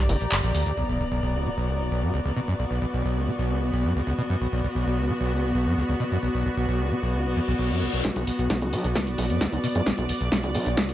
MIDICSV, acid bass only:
0, 0, Header, 1, 2, 480
1, 0, Start_track
1, 0, Key_signature, 2, "minor"
1, 0, Tempo, 454545
1, 817, Time_signature, 4, 2, 24, 8
1, 11551, End_track
2, 0, Start_track
2, 0, Title_t, "Acid bass"
2, 0, Program_c, 0, 38
2, 97, Note_on_c, 0, 31, 77
2, 137, Note_off_c, 0, 31, 0
2, 218, Note_on_c, 0, 34, 77
2, 284, Note_off_c, 0, 34, 0
2, 337, Note_on_c, 0, 31, 102
2, 437, Note_off_c, 0, 31, 0
2, 458, Note_on_c, 0, 34, 105
2, 556, Note_off_c, 0, 34, 0
2, 576, Note_on_c, 0, 38, 102
2, 677, Note_off_c, 0, 38, 0
2, 698, Note_on_c, 0, 38, 75
2, 764, Note_off_c, 0, 38, 0
2, 816, Note_on_c, 0, 35, 78
2, 883, Note_off_c, 0, 35, 0
2, 938, Note_on_c, 0, 35, 75
2, 1036, Note_off_c, 0, 35, 0
2, 1057, Note_on_c, 0, 35, 75
2, 1097, Note_off_c, 0, 35, 0
2, 1178, Note_on_c, 0, 35, 74
2, 1276, Note_off_c, 0, 35, 0
2, 1296, Note_on_c, 0, 35, 83
2, 1418, Note_on_c, 0, 37, 77
2, 1434, Note_off_c, 0, 35, 0
2, 1537, Note_on_c, 0, 50, 75
2, 1553, Note_off_c, 0, 37, 0
2, 1577, Note_off_c, 0, 50, 0
2, 1659, Note_on_c, 0, 35, 80
2, 1778, Note_on_c, 0, 37, 86
2, 1794, Note_off_c, 0, 35, 0
2, 1899, Note_on_c, 0, 35, 75
2, 1915, Note_off_c, 0, 37, 0
2, 1997, Note_off_c, 0, 35, 0
2, 2017, Note_on_c, 0, 35, 74
2, 2139, Note_on_c, 0, 42, 95
2, 2155, Note_off_c, 0, 35, 0
2, 2237, Note_off_c, 0, 42, 0
2, 2257, Note_on_c, 0, 37, 82
2, 2324, Note_off_c, 0, 37, 0
2, 2379, Note_on_c, 0, 37, 76
2, 2444, Note_off_c, 0, 37, 0
2, 2497, Note_on_c, 0, 47, 96
2, 2537, Note_off_c, 0, 47, 0
2, 2619, Note_on_c, 0, 42, 71
2, 2684, Note_off_c, 0, 42, 0
2, 2737, Note_on_c, 0, 35, 80
2, 2804, Note_off_c, 0, 35, 0
2, 2859, Note_on_c, 0, 35, 74
2, 2956, Note_off_c, 0, 35, 0
2, 2977, Note_on_c, 0, 35, 75
2, 3017, Note_off_c, 0, 35, 0
2, 3098, Note_on_c, 0, 35, 74
2, 3196, Note_off_c, 0, 35, 0
2, 3217, Note_on_c, 0, 35, 79
2, 3338, Note_on_c, 0, 37, 76
2, 3354, Note_off_c, 0, 35, 0
2, 3457, Note_on_c, 0, 50, 76
2, 3472, Note_off_c, 0, 37, 0
2, 3497, Note_off_c, 0, 50, 0
2, 3578, Note_on_c, 0, 35, 79
2, 3697, Note_on_c, 0, 37, 85
2, 3712, Note_off_c, 0, 35, 0
2, 3818, Note_on_c, 0, 35, 75
2, 3834, Note_off_c, 0, 37, 0
2, 3916, Note_off_c, 0, 35, 0
2, 3937, Note_on_c, 0, 35, 77
2, 4058, Note_on_c, 0, 42, 98
2, 4074, Note_off_c, 0, 35, 0
2, 4156, Note_off_c, 0, 42, 0
2, 4177, Note_on_c, 0, 37, 83
2, 4244, Note_off_c, 0, 37, 0
2, 4299, Note_on_c, 0, 37, 77
2, 4364, Note_off_c, 0, 37, 0
2, 4417, Note_on_c, 0, 47, 97
2, 4457, Note_off_c, 0, 47, 0
2, 4538, Note_on_c, 0, 42, 75
2, 4604, Note_off_c, 0, 42, 0
2, 4656, Note_on_c, 0, 35, 82
2, 4724, Note_off_c, 0, 35, 0
2, 4777, Note_on_c, 0, 35, 73
2, 4876, Note_off_c, 0, 35, 0
2, 4896, Note_on_c, 0, 35, 74
2, 4937, Note_off_c, 0, 35, 0
2, 5017, Note_on_c, 0, 35, 73
2, 5116, Note_off_c, 0, 35, 0
2, 5135, Note_on_c, 0, 35, 80
2, 5258, Note_on_c, 0, 37, 76
2, 5274, Note_off_c, 0, 35, 0
2, 5376, Note_on_c, 0, 50, 78
2, 5392, Note_off_c, 0, 37, 0
2, 5417, Note_off_c, 0, 50, 0
2, 5497, Note_on_c, 0, 35, 79
2, 5616, Note_on_c, 0, 37, 84
2, 5632, Note_off_c, 0, 35, 0
2, 5737, Note_on_c, 0, 35, 75
2, 5753, Note_off_c, 0, 37, 0
2, 5836, Note_off_c, 0, 35, 0
2, 5856, Note_on_c, 0, 35, 76
2, 5978, Note_on_c, 0, 42, 101
2, 5994, Note_off_c, 0, 35, 0
2, 6076, Note_off_c, 0, 42, 0
2, 6096, Note_on_c, 0, 37, 84
2, 6163, Note_off_c, 0, 37, 0
2, 6218, Note_on_c, 0, 37, 77
2, 6284, Note_off_c, 0, 37, 0
2, 6336, Note_on_c, 0, 47, 99
2, 6377, Note_off_c, 0, 47, 0
2, 6459, Note_on_c, 0, 42, 74
2, 6524, Note_off_c, 0, 42, 0
2, 6577, Note_on_c, 0, 35, 81
2, 6644, Note_off_c, 0, 35, 0
2, 6698, Note_on_c, 0, 35, 74
2, 6796, Note_off_c, 0, 35, 0
2, 6816, Note_on_c, 0, 35, 76
2, 6857, Note_off_c, 0, 35, 0
2, 6938, Note_on_c, 0, 35, 74
2, 7036, Note_off_c, 0, 35, 0
2, 7057, Note_on_c, 0, 35, 84
2, 7178, Note_on_c, 0, 37, 76
2, 7193, Note_off_c, 0, 35, 0
2, 7296, Note_on_c, 0, 50, 77
2, 7312, Note_off_c, 0, 37, 0
2, 7337, Note_off_c, 0, 50, 0
2, 7417, Note_on_c, 0, 35, 79
2, 7536, Note_on_c, 0, 37, 87
2, 7552, Note_off_c, 0, 35, 0
2, 7657, Note_on_c, 0, 35, 74
2, 7673, Note_off_c, 0, 37, 0
2, 7756, Note_off_c, 0, 35, 0
2, 7776, Note_on_c, 0, 40, 74
2, 7817, Note_off_c, 0, 40, 0
2, 7897, Note_on_c, 0, 35, 101
2, 7963, Note_off_c, 0, 35, 0
2, 8015, Note_on_c, 0, 35, 83
2, 8137, Note_on_c, 0, 42, 77
2, 8152, Note_off_c, 0, 35, 0
2, 8256, Note_on_c, 0, 34, 76
2, 8271, Note_off_c, 0, 42, 0
2, 8323, Note_off_c, 0, 34, 0
2, 8377, Note_on_c, 0, 35, 76
2, 8476, Note_off_c, 0, 35, 0
2, 8496, Note_on_c, 0, 35, 79
2, 8563, Note_off_c, 0, 35, 0
2, 8617, Note_on_c, 0, 35, 74
2, 8716, Note_off_c, 0, 35, 0
2, 8735, Note_on_c, 0, 35, 76
2, 8776, Note_off_c, 0, 35, 0
2, 8857, Note_on_c, 0, 35, 76
2, 8956, Note_off_c, 0, 35, 0
2, 8976, Note_on_c, 0, 35, 82
2, 9098, Note_on_c, 0, 37, 78
2, 9114, Note_off_c, 0, 35, 0
2, 9216, Note_on_c, 0, 50, 79
2, 9232, Note_off_c, 0, 37, 0
2, 9257, Note_off_c, 0, 50, 0
2, 9338, Note_on_c, 0, 35, 77
2, 9456, Note_on_c, 0, 37, 86
2, 9472, Note_off_c, 0, 35, 0
2, 9578, Note_on_c, 0, 35, 74
2, 9594, Note_off_c, 0, 37, 0
2, 9676, Note_off_c, 0, 35, 0
2, 9697, Note_on_c, 0, 35, 77
2, 9817, Note_on_c, 0, 42, 99
2, 9833, Note_off_c, 0, 35, 0
2, 9916, Note_off_c, 0, 42, 0
2, 9936, Note_on_c, 0, 37, 84
2, 10003, Note_off_c, 0, 37, 0
2, 10057, Note_on_c, 0, 37, 79
2, 10123, Note_off_c, 0, 37, 0
2, 10175, Note_on_c, 0, 47, 100
2, 10216, Note_off_c, 0, 47, 0
2, 10297, Note_on_c, 0, 42, 76
2, 10363, Note_off_c, 0, 42, 0
2, 10416, Note_on_c, 0, 35, 80
2, 10484, Note_off_c, 0, 35, 0
2, 10538, Note_on_c, 0, 35, 74
2, 10636, Note_off_c, 0, 35, 0
2, 10656, Note_on_c, 0, 35, 75
2, 10697, Note_off_c, 0, 35, 0
2, 10778, Note_on_c, 0, 35, 73
2, 10876, Note_off_c, 0, 35, 0
2, 10896, Note_on_c, 0, 35, 85
2, 11019, Note_on_c, 0, 37, 75
2, 11034, Note_off_c, 0, 35, 0
2, 11137, Note_on_c, 0, 50, 78
2, 11153, Note_off_c, 0, 37, 0
2, 11177, Note_off_c, 0, 50, 0
2, 11258, Note_on_c, 0, 35, 79
2, 11377, Note_on_c, 0, 37, 88
2, 11393, Note_off_c, 0, 35, 0
2, 11499, Note_on_c, 0, 35, 75
2, 11515, Note_off_c, 0, 37, 0
2, 11551, Note_off_c, 0, 35, 0
2, 11551, End_track
0, 0, End_of_file